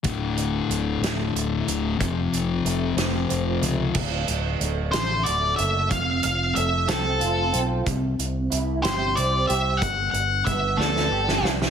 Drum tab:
CC |------------|------------|x-----------|------------|
HH |x-x-x-x-x-x-|x-x-x-x-x-x-|--x-x-x-x-x-|x-x-x-x-x-x-|
SD |------o-----|------o-----|------o-----|------o-----|
BD |o-----------|o-----------|o-----------|o-----------|

CC |------------|------------|
HH |x-x-x-x-x-x-|x-x-x-------|
SD |------o-----|------oo-ooo|
BD |o-----------|o---o-------|